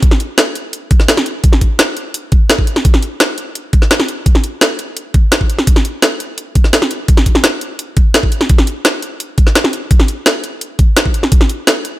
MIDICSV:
0, 0, Header, 1, 2, 480
1, 0, Start_track
1, 0, Tempo, 352941
1, 35, Time_signature, 4, 2, 24, 8
1, 16312, End_track
2, 0, Start_track
2, 0, Title_t, "Drums"
2, 34, Note_on_c, 9, 42, 94
2, 35, Note_on_c, 9, 36, 126
2, 154, Note_on_c, 9, 40, 49
2, 170, Note_off_c, 9, 42, 0
2, 171, Note_off_c, 9, 36, 0
2, 273, Note_on_c, 9, 42, 64
2, 290, Note_off_c, 9, 40, 0
2, 409, Note_off_c, 9, 42, 0
2, 513, Note_on_c, 9, 38, 122
2, 513, Note_on_c, 9, 42, 89
2, 649, Note_off_c, 9, 38, 0
2, 649, Note_off_c, 9, 42, 0
2, 754, Note_on_c, 9, 42, 64
2, 890, Note_off_c, 9, 42, 0
2, 994, Note_on_c, 9, 42, 93
2, 1130, Note_off_c, 9, 42, 0
2, 1233, Note_on_c, 9, 42, 65
2, 1236, Note_on_c, 9, 36, 116
2, 1355, Note_on_c, 9, 38, 40
2, 1369, Note_off_c, 9, 42, 0
2, 1372, Note_off_c, 9, 36, 0
2, 1475, Note_off_c, 9, 38, 0
2, 1475, Note_on_c, 9, 38, 125
2, 1475, Note_on_c, 9, 42, 89
2, 1596, Note_on_c, 9, 40, 55
2, 1611, Note_off_c, 9, 38, 0
2, 1611, Note_off_c, 9, 42, 0
2, 1714, Note_on_c, 9, 42, 63
2, 1732, Note_off_c, 9, 40, 0
2, 1850, Note_off_c, 9, 42, 0
2, 1953, Note_on_c, 9, 42, 90
2, 1956, Note_on_c, 9, 36, 126
2, 2075, Note_on_c, 9, 40, 48
2, 2089, Note_off_c, 9, 42, 0
2, 2092, Note_off_c, 9, 36, 0
2, 2194, Note_on_c, 9, 42, 63
2, 2196, Note_on_c, 9, 36, 63
2, 2211, Note_off_c, 9, 40, 0
2, 2330, Note_off_c, 9, 42, 0
2, 2332, Note_off_c, 9, 36, 0
2, 2434, Note_on_c, 9, 38, 122
2, 2434, Note_on_c, 9, 42, 85
2, 2570, Note_off_c, 9, 38, 0
2, 2570, Note_off_c, 9, 42, 0
2, 2674, Note_on_c, 9, 42, 61
2, 2810, Note_off_c, 9, 42, 0
2, 2914, Note_on_c, 9, 42, 92
2, 3050, Note_off_c, 9, 42, 0
2, 3153, Note_on_c, 9, 42, 63
2, 3156, Note_on_c, 9, 36, 112
2, 3289, Note_off_c, 9, 42, 0
2, 3292, Note_off_c, 9, 36, 0
2, 3394, Note_on_c, 9, 38, 123
2, 3394, Note_on_c, 9, 42, 86
2, 3517, Note_on_c, 9, 36, 63
2, 3530, Note_off_c, 9, 38, 0
2, 3530, Note_off_c, 9, 42, 0
2, 3634, Note_on_c, 9, 42, 64
2, 3653, Note_off_c, 9, 36, 0
2, 3755, Note_on_c, 9, 40, 47
2, 3770, Note_off_c, 9, 42, 0
2, 3874, Note_on_c, 9, 42, 89
2, 3876, Note_on_c, 9, 36, 119
2, 3891, Note_off_c, 9, 40, 0
2, 3996, Note_on_c, 9, 40, 46
2, 4010, Note_off_c, 9, 42, 0
2, 4012, Note_off_c, 9, 36, 0
2, 4114, Note_on_c, 9, 42, 64
2, 4132, Note_off_c, 9, 40, 0
2, 4250, Note_off_c, 9, 42, 0
2, 4354, Note_on_c, 9, 38, 116
2, 4354, Note_on_c, 9, 42, 86
2, 4490, Note_off_c, 9, 38, 0
2, 4490, Note_off_c, 9, 42, 0
2, 4593, Note_on_c, 9, 42, 64
2, 4729, Note_off_c, 9, 42, 0
2, 4833, Note_on_c, 9, 42, 93
2, 4969, Note_off_c, 9, 42, 0
2, 5074, Note_on_c, 9, 42, 64
2, 5075, Note_on_c, 9, 36, 105
2, 5195, Note_on_c, 9, 38, 37
2, 5210, Note_off_c, 9, 42, 0
2, 5211, Note_off_c, 9, 36, 0
2, 5315, Note_off_c, 9, 38, 0
2, 5315, Note_on_c, 9, 38, 119
2, 5315, Note_on_c, 9, 42, 87
2, 5434, Note_on_c, 9, 40, 53
2, 5451, Note_off_c, 9, 38, 0
2, 5451, Note_off_c, 9, 42, 0
2, 5555, Note_on_c, 9, 42, 63
2, 5570, Note_off_c, 9, 40, 0
2, 5691, Note_off_c, 9, 42, 0
2, 5794, Note_on_c, 9, 42, 92
2, 5795, Note_on_c, 9, 36, 115
2, 5915, Note_on_c, 9, 40, 46
2, 5930, Note_off_c, 9, 42, 0
2, 5931, Note_off_c, 9, 36, 0
2, 6033, Note_on_c, 9, 42, 67
2, 6051, Note_off_c, 9, 40, 0
2, 6169, Note_off_c, 9, 42, 0
2, 6273, Note_on_c, 9, 38, 112
2, 6273, Note_on_c, 9, 42, 91
2, 6409, Note_off_c, 9, 38, 0
2, 6409, Note_off_c, 9, 42, 0
2, 6513, Note_on_c, 9, 42, 64
2, 6649, Note_off_c, 9, 42, 0
2, 6753, Note_on_c, 9, 42, 94
2, 6889, Note_off_c, 9, 42, 0
2, 6993, Note_on_c, 9, 42, 66
2, 6995, Note_on_c, 9, 36, 106
2, 7129, Note_off_c, 9, 42, 0
2, 7131, Note_off_c, 9, 36, 0
2, 7232, Note_on_c, 9, 38, 114
2, 7232, Note_on_c, 9, 42, 90
2, 7356, Note_on_c, 9, 36, 59
2, 7368, Note_off_c, 9, 38, 0
2, 7368, Note_off_c, 9, 42, 0
2, 7474, Note_on_c, 9, 42, 65
2, 7492, Note_off_c, 9, 36, 0
2, 7596, Note_on_c, 9, 40, 47
2, 7610, Note_off_c, 9, 42, 0
2, 7714, Note_on_c, 9, 42, 101
2, 7715, Note_on_c, 9, 36, 115
2, 7732, Note_off_c, 9, 40, 0
2, 7836, Note_on_c, 9, 40, 46
2, 7850, Note_off_c, 9, 42, 0
2, 7851, Note_off_c, 9, 36, 0
2, 7954, Note_on_c, 9, 42, 69
2, 7972, Note_off_c, 9, 40, 0
2, 8090, Note_off_c, 9, 42, 0
2, 8193, Note_on_c, 9, 38, 112
2, 8193, Note_on_c, 9, 42, 94
2, 8329, Note_off_c, 9, 38, 0
2, 8329, Note_off_c, 9, 42, 0
2, 8434, Note_on_c, 9, 42, 70
2, 8570, Note_off_c, 9, 42, 0
2, 8673, Note_on_c, 9, 42, 96
2, 8809, Note_off_c, 9, 42, 0
2, 8914, Note_on_c, 9, 42, 69
2, 8915, Note_on_c, 9, 36, 103
2, 9035, Note_on_c, 9, 38, 35
2, 9050, Note_off_c, 9, 42, 0
2, 9051, Note_off_c, 9, 36, 0
2, 9154, Note_off_c, 9, 38, 0
2, 9154, Note_on_c, 9, 38, 112
2, 9154, Note_on_c, 9, 42, 97
2, 9275, Note_on_c, 9, 40, 54
2, 9290, Note_off_c, 9, 38, 0
2, 9290, Note_off_c, 9, 42, 0
2, 9394, Note_on_c, 9, 42, 67
2, 9411, Note_off_c, 9, 40, 0
2, 9530, Note_off_c, 9, 42, 0
2, 9634, Note_on_c, 9, 42, 100
2, 9636, Note_on_c, 9, 36, 118
2, 9756, Note_on_c, 9, 40, 49
2, 9770, Note_off_c, 9, 42, 0
2, 9772, Note_off_c, 9, 36, 0
2, 9875, Note_on_c, 9, 42, 69
2, 9876, Note_on_c, 9, 36, 59
2, 9892, Note_off_c, 9, 40, 0
2, 9996, Note_on_c, 9, 40, 55
2, 10011, Note_off_c, 9, 42, 0
2, 10012, Note_off_c, 9, 36, 0
2, 10114, Note_on_c, 9, 38, 112
2, 10114, Note_on_c, 9, 42, 94
2, 10132, Note_off_c, 9, 40, 0
2, 10250, Note_off_c, 9, 38, 0
2, 10250, Note_off_c, 9, 42, 0
2, 10355, Note_on_c, 9, 42, 70
2, 10491, Note_off_c, 9, 42, 0
2, 10595, Note_on_c, 9, 42, 103
2, 10731, Note_off_c, 9, 42, 0
2, 10834, Note_on_c, 9, 42, 73
2, 10836, Note_on_c, 9, 36, 105
2, 10970, Note_off_c, 9, 42, 0
2, 10972, Note_off_c, 9, 36, 0
2, 11074, Note_on_c, 9, 38, 119
2, 11074, Note_on_c, 9, 42, 96
2, 11196, Note_on_c, 9, 36, 59
2, 11210, Note_off_c, 9, 38, 0
2, 11210, Note_off_c, 9, 42, 0
2, 11314, Note_on_c, 9, 42, 67
2, 11332, Note_off_c, 9, 36, 0
2, 11434, Note_on_c, 9, 40, 50
2, 11450, Note_off_c, 9, 42, 0
2, 11553, Note_on_c, 9, 42, 100
2, 11555, Note_on_c, 9, 36, 120
2, 11570, Note_off_c, 9, 40, 0
2, 11675, Note_on_c, 9, 40, 52
2, 11689, Note_off_c, 9, 42, 0
2, 11691, Note_off_c, 9, 36, 0
2, 11793, Note_on_c, 9, 42, 69
2, 11811, Note_off_c, 9, 40, 0
2, 11929, Note_off_c, 9, 42, 0
2, 12034, Note_on_c, 9, 38, 117
2, 12034, Note_on_c, 9, 42, 95
2, 12170, Note_off_c, 9, 38, 0
2, 12170, Note_off_c, 9, 42, 0
2, 12273, Note_on_c, 9, 42, 69
2, 12409, Note_off_c, 9, 42, 0
2, 12514, Note_on_c, 9, 42, 102
2, 12650, Note_off_c, 9, 42, 0
2, 12753, Note_on_c, 9, 42, 70
2, 12755, Note_on_c, 9, 36, 110
2, 12875, Note_on_c, 9, 38, 38
2, 12889, Note_off_c, 9, 42, 0
2, 12891, Note_off_c, 9, 36, 0
2, 12994, Note_off_c, 9, 38, 0
2, 12994, Note_on_c, 9, 38, 116
2, 12994, Note_on_c, 9, 42, 98
2, 13115, Note_on_c, 9, 40, 59
2, 13130, Note_off_c, 9, 38, 0
2, 13130, Note_off_c, 9, 42, 0
2, 13234, Note_on_c, 9, 42, 69
2, 13251, Note_off_c, 9, 40, 0
2, 13370, Note_off_c, 9, 42, 0
2, 13474, Note_on_c, 9, 42, 94
2, 13475, Note_on_c, 9, 36, 125
2, 13594, Note_on_c, 9, 40, 50
2, 13610, Note_off_c, 9, 42, 0
2, 13611, Note_off_c, 9, 36, 0
2, 13713, Note_on_c, 9, 42, 68
2, 13730, Note_off_c, 9, 40, 0
2, 13849, Note_off_c, 9, 42, 0
2, 13953, Note_on_c, 9, 38, 119
2, 13953, Note_on_c, 9, 42, 90
2, 14089, Note_off_c, 9, 38, 0
2, 14089, Note_off_c, 9, 42, 0
2, 14193, Note_on_c, 9, 42, 65
2, 14329, Note_off_c, 9, 42, 0
2, 14434, Note_on_c, 9, 42, 94
2, 14570, Note_off_c, 9, 42, 0
2, 14673, Note_on_c, 9, 42, 68
2, 14675, Note_on_c, 9, 36, 110
2, 14809, Note_off_c, 9, 42, 0
2, 14811, Note_off_c, 9, 36, 0
2, 14913, Note_on_c, 9, 38, 125
2, 14913, Note_on_c, 9, 42, 92
2, 15035, Note_on_c, 9, 36, 64
2, 15049, Note_off_c, 9, 38, 0
2, 15049, Note_off_c, 9, 42, 0
2, 15153, Note_on_c, 9, 42, 67
2, 15171, Note_off_c, 9, 36, 0
2, 15275, Note_on_c, 9, 40, 51
2, 15289, Note_off_c, 9, 42, 0
2, 15392, Note_on_c, 9, 42, 91
2, 15395, Note_on_c, 9, 36, 127
2, 15411, Note_off_c, 9, 40, 0
2, 15514, Note_on_c, 9, 40, 50
2, 15528, Note_off_c, 9, 42, 0
2, 15531, Note_off_c, 9, 36, 0
2, 15633, Note_on_c, 9, 42, 64
2, 15650, Note_off_c, 9, 40, 0
2, 15769, Note_off_c, 9, 42, 0
2, 15874, Note_on_c, 9, 38, 123
2, 15874, Note_on_c, 9, 42, 88
2, 16010, Note_off_c, 9, 38, 0
2, 16010, Note_off_c, 9, 42, 0
2, 16114, Note_on_c, 9, 42, 65
2, 16250, Note_off_c, 9, 42, 0
2, 16312, End_track
0, 0, End_of_file